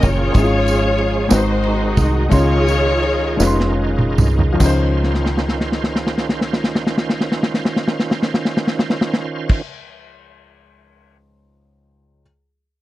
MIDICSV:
0, 0, Header, 1, 6, 480
1, 0, Start_track
1, 0, Key_signature, -5, "major"
1, 0, Tempo, 651466
1, 262, Time_signature, 6, 3, 24, 8
1, 1710, Tempo, 733496
1, 2670, Tempo, 816327
1, 3150, Tempo, 849858
1, 7788, End_track
2, 0, Start_track
2, 0, Title_t, "String section"
2, 0, Program_c, 0, 48
2, 0, Note_on_c, 0, 70, 79
2, 31, Note_on_c, 0, 65, 79
2, 31, Note_on_c, 0, 68, 78
2, 35, Note_on_c, 0, 73, 111
2, 233, Note_off_c, 0, 70, 0
2, 942, Note_off_c, 0, 65, 0
2, 942, Note_off_c, 0, 68, 0
2, 973, Note_on_c, 0, 66, 66
2, 974, Note_off_c, 0, 73, 0
2, 975, Note_on_c, 0, 63, 69
2, 978, Note_on_c, 0, 72, 88
2, 1463, Note_off_c, 0, 72, 0
2, 1683, Note_off_c, 0, 66, 0
2, 1684, Note_off_c, 0, 63, 0
2, 1704, Note_on_c, 0, 73, 127
2, 1710, Note_on_c, 0, 68, 94
2, 1711, Note_on_c, 0, 65, 87
2, 2641, Note_off_c, 0, 73, 0
2, 2644, Note_off_c, 0, 65, 0
2, 2644, Note_off_c, 0, 68, 0
2, 7788, End_track
3, 0, Start_track
3, 0, Title_t, "Grand piano"
3, 0, Program_c, 1, 0
3, 0, Control_c, 1, 64, 127
3, 0, Note_on_c, 1, 46, 68
3, 0, Note_on_c, 1, 55, 66
3, 0, Note_on_c, 1, 58, 64
3, 0, Note_on_c, 1, 61, 64
3, 0, Note_on_c, 1, 64, 63
3, 0, Note_on_c, 1, 70, 80
3, 119, Note_off_c, 1, 55, 0
3, 124, Note_off_c, 1, 58, 0
3, 128, Note_off_c, 1, 61, 0
3, 129, Note_off_c, 1, 64, 0
3, 158, Note_off_c, 1, 70, 0
3, 230, Note_off_c, 1, 46, 0
3, 240, Note_on_c, 1, 61, 80
3, 252, Note_on_c, 1, 64, 64
3, 253, Note_on_c, 1, 44, 67
3, 264, Note_on_c, 1, 68, 91
3, 272, Control_c, 1, 64, 0
3, 302, Note_on_c, 1, 65, 77
3, 305, Note_off_c, 1, 64, 0
3, 417, Control_c, 1, 64, 127
3, 824, Note_off_c, 1, 61, 0
3, 836, Note_off_c, 1, 68, 0
3, 855, Note_off_c, 1, 65, 0
3, 937, Note_off_c, 1, 44, 0
3, 943, Note_on_c, 1, 56, 69
3, 950, Note_on_c, 1, 60, 63
3, 955, Note_on_c, 1, 44, 68
3, 956, Note_on_c, 1, 63, 67
3, 962, Note_on_c, 1, 66, 66
3, 971, Note_on_c, 1, 71, 61
3, 980, Control_c, 1, 64, 0
3, 1014, Note_on_c, 1, 72, 73
3, 1020, Note_off_c, 1, 71, 0
3, 1120, Control_c, 1, 64, 127
3, 1554, Note_off_c, 1, 56, 0
3, 1558, Note_off_c, 1, 60, 0
3, 1561, Note_off_c, 1, 63, 0
3, 1564, Note_off_c, 1, 66, 0
3, 1589, Note_off_c, 1, 72, 0
3, 1674, Note_off_c, 1, 44, 0
3, 1689, Note_on_c, 1, 56, 80
3, 1693, Note_on_c, 1, 61, 75
3, 1701, Note_on_c, 1, 49, 64
3, 1702, Note_on_c, 1, 63, 74
3, 1707, Note_on_c, 1, 65, 74
3, 1715, Note_on_c, 1, 84, 90
3, 1720, Control_c, 1, 64, 0
3, 1817, Control_c, 1, 64, 127
3, 2270, Note_off_c, 1, 56, 0
3, 2272, Note_off_c, 1, 61, 0
3, 2276, Note_off_c, 1, 63, 0
3, 2279, Note_off_c, 1, 65, 0
3, 2283, Note_off_c, 1, 84, 0
3, 2389, Note_off_c, 1, 49, 0
3, 2396, Note_on_c, 1, 56, 85
3, 2402, Note_on_c, 1, 61, 74
3, 2407, Note_on_c, 1, 63, 74
3, 2413, Note_on_c, 1, 65, 71
3, 2419, Note_on_c, 1, 71, 72
3, 2460, Note_on_c, 1, 84, 94
3, 2470, Note_off_c, 1, 71, 0
3, 3000, Note_off_c, 1, 56, 0
3, 3003, Note_off_c, 1, 61, 0
3, 3005, Note_off_c, 1, 63, 0
3, 3007, Note_off_c, 1, 65, 0
3, 3029, Note_off_c, 1, 84, 0
3, 3104, Note_on_c, 1, 53, 85
3, 3132, Note_on_c, 1, 61, 72
3, 3143, Note_on_c, 1, 37, 80
3, 3157, Control_c, 1, 64, 0
3, 3158, Note_on_c, 1, 63, 73
3, 3179, Note_on_c, 1, 72, 94
3, 3267, Control_c, 1, 64, 127
3, 5963, Note_off_c, 1, 53, 0
3, 5976, Note_off_c, 1, 61, 0
3, 5982, Note_off_c, 1, 37, 0
3, 5989, Note_off_c, 1, 63, 0
3, 6000, Note_off_c, 1, 72, 0
3, 7452, Control_c, 1, 64, 0
3, 7788, End_track
4, 0, Start_track
4, 0, Title_t, "Tonewheel organ"
4, 0, Program_c, 2, 16
4, 0, Note_on_c, 2, 49, 70
4, 0, Note_on_c, 2, 58, 61
4, 0, Note_on_c, 2, 61, 62
4, 0, Note_on_c, 2, 79, 75
4, 251, Note_off_c, 2, 58, 0
4, 253, Note_on_c, 2, 53, 69
4, 254, Note_off_c, 2, 49, 0
4, 256, Note_off_c, 2, 79, 0
4, 258, Note_on_c, 2, 56, 63
4, 265, Note_on_c, 2, 68, 71
4, 958, Note_off_c, 2, 61, 0
4, 959, Note_off_c, 2, 53, 0
4, 961, Note_on_c, 2, 63, 63
4, 961, Note_on_c, 2, 66, 76
4, 965, Note_off_c, 2, 68, 0
4, 965, Note_on_c, 2, 51, 69
4, 1694, Note_off_c, 2, 56, 0
4, 1699, Note_off_c, 2, 66, 0
4, 1701, Note_off_c, 2, 51, 0
4, 1713, Note_on_c, 2, 65, 73
4, 1717, Note_on_c, 2, 51, 65
4, 1721, Note_on_c, 2, 61, 59
4, 3127, Note_off_c, 2, 63, 0
4, 3136, Note_off_c, 2, 51, 0
4, 3138, Note_off_c, 2, 61, 0
4, 3138, Note_off_c, 2, 65, 0
4, 3145, Note_on_c, 2, 61, 61
4, 3146, Note_on_c, 2, 72, 60
4, 3147, Note_on_c, 2, 65, 71
4, 5983, Note_off_c, 2, 61, 0
4, 5983, Note_off_c, 2, 72, 0
4, 5984, Note_off_c, 2, 65, 0
4, 7788, End_track
5, 0, Start_track
5, 0, Title_t, "Fingered electric bass"
5, 0, Program_c, 3, 33
5, 22, Note_on_c, 3, 30, 102
5, 240, Note_off_c, 3, 30, 0
5, 255, Note_on_c, 3, 32, 103
5, 937, Note_off_c, 3, 32, 0
5, 968, Note_on_c, 3, 32, 110
5, 1428, Note_off_c, 3, 32, 0
5, 1458, Note_on_c, 3, 36, 95
5, 1690, Note_off_c, 3, 36, 0
5, 1709, Note_on_c, 3, 37, 107
5, 2392, Note_off_c, 3, 37, 0
5, 2416, Note_on_c, 3, 29, 95
5, 2881, Note_off_c, 3, 29, 0
5, 2901, Note_on_c, 3, 36, 85
5, 3128, Note_off_c, 3, 36, 0
5, 3151, Note_on_c, 3, 37, 100
5, 5985, Note_off_c, 3, 37, 0
5, 7788, End_track
6, 0, Start_track
6, 0, Title_t, "Drums"
6, 19, Note_on_c, 9, 54, 45
6, 24, Note_on_c, 9, 36, 95
6, 27, Note_on_c, 9, 51, 51
6, 93, Note_off_c, 9, 54, 0
6, 98, Note_off_c, 9, 36, 0
6, 101, Note_off_c, 9, 51, 0
6, 251, Note_on_c, 9, 51, 69
6, 257, Note_on_c, 9, 36, 126
6, 258, Note_on_c, 9, 54, 54
6, 325, Note_off_c, 9, 51, 0
6, 331, Note_off_c, 9, 36, 0
6, 331, Note_off_c, 9, 54, 0
6, 490, Note_on_c, 9, 51, 47
6, 500, Note_on_c, 9, 54, 52
6, 563, Note_off_c, 9, 51, 0
6, 574, Note_off_c, 9, 54, 0
6, 724, Note_on_c, 9, 51, 42
6, 797, Note_off_c, 9, 51, 0
6, 962, Note_on_c, 9, 51, 84
6, 962, Note_on_c, 9, 54, 89
6, 966, Note_on_c, 9, 38, 110
6, 1035, Note_off_c, 9, 54, 0
6, 1036, Note_off_c, 9, 51, 0
6, 1040, Note_off_c, 9, 38, 0
6, 1205, Note_on_c, 9, 51, 45
6, 1279, Note_off_c, 9, 51, 0
6, 1452, Note_on_c, 9, 51, 52
6, 1453, Note_on_c, 9, 54, 47
6, 1454, Note_on_c, 9, 36, 98
6, 1525, Note_off_c, 9, 51, 0
6, 1526, Note_off_c, 9, 54, 0
6, 1528, Note_off_c, 9, 36, 0
6, 1703, Note_on_c, 9, 51, 72
6, 1707, Note_on_c, 9, 36, 120
6, 1709, Note_on_c, 9, 54, 56
6, 1770, Note_off_c, 9, 51, 0
6, 1773, Note_off_c, 9, 36, 0
6, 1775, Note_off_c, 9, 54, 0
6, 1937, Note_on_c, 9, 51, 44
6, 1947, Note_on_c, 9, 54, 52
6, 2002, Note_off_c, 9, 51, 0
6, 2013, Note_off_c, 9, 54, 0
6, 2174, Note_on_c, 9, 51, 42
6, 2240, Note_off_c, 9, 51, 0
6, 2416, Note_on_c, 9, 54, 93
6, 2421, Note_on_c, 9, 38, 62
6, 2481, Note_off_c, 9, 54, 0
6, 2486, Note_off_c, 9, 38, 0
6, 2548, Note_on_c, 9, 38, 63
6, 2613, Note_off_c, 9, 38, 0
6, 2786, Note_on_c, 9, 47, 83
6, 2845, Note_off_c, 9, 47, 0
6, 2901, Note_on_c, 9, 54, 50
6, 2902, Note_on_c, 9, 45, 104
6, 2960, Note_off_c, 9, 54, 0
6, 2961, Note_off_c, 9, 45, 0
6, 3023, Note_on_c, 9, 43, 101
6, 3082, Note_off_c, 9, 43, 0
6, 3148, Note_on_c, 9, 54, 88
6, 3149, Note_on_c, 9, 36, 105
6, 3149, Note_on_c, 9, 49, 97
6, 3205, Note_off_c, 9, 49, 0
6, 3205, Note_off_c, 9, 54, 0
6, 3206, Note_off_c, 9, 36, 0
6, 3393, Note_on_c, 9, 38, 49
6, 3449, Note_off_c, 9, 38, 0
6, 3455, Note_on_c, 9, 38, 48
6, 3512, Note_off_c, 9, 38, 0
6, 3520, Note_on_c, 9, 38, 53
6, 3576, Note_off_c, 9, 38, 0
6, 3586, Note_on_c, 9, 38, 54
6, 3642, Note_off_c, 9, 38, 0
6, 3648, Note_on_c, 9, 38, 55
6, 3705, Note_off_c, 9, 38, 0
6, 3715, Note_on_c, 9, 38, 53
6, 3772, Note_off_c, 9, 38, 0
6, 3781, Note_on_c, 9, 38, 58
6, 3838, Note_off_c, 9, 38, 0
6, 3846, Note_on_c, 9, 38, 55
6, 3903, Note_off_c, 9, 38, 0
6, 3914, Note_on_c, 9, 38, 59
6, 3970, Note_off_c, 9, 38, 0
6, 3976, Note_on_c, 9, 38, 55
6, 4032, Note_off_c, 9, 38, 0
6, 4038, Note_on_c, 9, 38, 61
6, 4095, Note_off_c, 9, 38, 0
6, 4104, Note_on_c, 9, 38, 61
6, 4160, Note_off_c, 9, 38, 0
6, 4171, Note_on_c, 9, 38, 64
6, 4228, Note_off_c, 9, 38, 0
6, 4239, Note_on_c, 9, 38, 64
6, 4295, Note_off_c, 9, 38, 0
6, 4299, Note_on_c, 9, 38, 70
6, 4355, Note_off_c, 9, 38, 0
6, 4364, Note_on_c, 9, 38, 70
6, 4420, Note_off_c, 9, 38, 0
6, 4427, Note_on_c, 9, 38, 71
6, 4484, Note_off_c, 9, 38, 0
6, 4489, Note_on_c, 9, 38, 74
6, 4546, Note_off_c, 9, 38, 0
6, 4557, Note_on_c, 9, 38, 74
6, 4613, Note_off_c, 9, 38, 0
6, 4620, Note_on_c, 9, 38, 71
6, 4676, Note_off_c, 9, 38, 0
6, 4682, Note_on_c, 9, 38, 76
6, 4738, Note_off_c, 9, 38, 0
6, 4746, Note_on_c, 9, 38, 77
6, 4803, Note_off_c, 9, 38, 0
6, 4809, Note_on_c, 9, 38, 80
6, 4865, Note_off_c, 9, 38, 0
6, 4872, Note_on_c, 9, 38, 79
6, 4928, Note_off_c, 9, 38, 0
6, 4935, Note_on_c, 9, 38, 82
6, 4991, Note_off_c, 9, 38, 0
6, 4998, Note_on_c, 9, 38, 87
6, 5055, Note_off_c, 9, 38, 0
6, 5065, Note_on_c, 9, 38, 90
6, 5122, Note_off_c, 9, 38, 0
6, 5131, Note_on_c, 9, 38, 85
6, 5188, Note_off_c, 9, 38, 0
6, 5195, Note_on_c, 9, 38, 88
6, 5252, Note_off_c, 9, 38, 0
6, 5261, Note_on_c, 9, 38, 88
6, 5317, Note_off_c, 9, 38, 0
6, 5324, Note_on_c, 9, 38, 88
6, 5380, Note_off_c, 9, 38, 0
6, 5390, Note_on_c, 9, 38, 88
6, 5446, Note_off_c, 9, 38, 0
6, 5448, Note_on_c, 9, 38, 91
6, 5505, Note_off_c, 9, 38, 0
6, 5515, Note_on_c, 9, 38, 90
6, 5571, Note_off_c, 9, 38, 0
6, 5576, Note_on_c, 9, 38, 97
6, 5633, Note_off_c, 9, 38, 0
6, 5640, Note_on_c, 9, 38, 91
6, 5696, Note_off_c, 9, 38, 0
6, 5709, Note_on_c, 9, 38, 100
6, 5765, Note_off_c, 9, 38, 0
6, 5910, Note_on_c, 9, 49, 107
6, 5913, Note_on_c, 9, 36, 119
6, 5967, Note_off_c, 9, 49, 0
6, 5969, Note_off_c, 9, 36, 0
6, 7788, End_track
0, 0, End_of_file